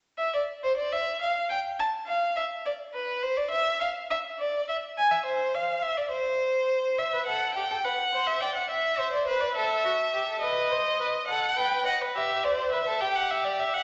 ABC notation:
X:1
M:12/8
L:1/16
Q:3/8=69
K:Ephr
V:1 name="Violin"
z e d2 c d e2 f2 g2 a2 f2 e2 d2 B2 c d | e2 f2 e2 d2 e2 ^g e c2 f2 e d c6 | e2 ^f2 g2 f3 e g f e3 d c d e6 | ^d6 ^f2 g2 f2 e2 =d2 e2 g f e d e f |]
V:2 name="Violin"
z24 | z24 | z B A2 G A B2 c2 d2 e2 c2 B2 A2 ^F2 G A | B2 c2 B2 A2 B2 ^d B G2 c2 B A G6 |]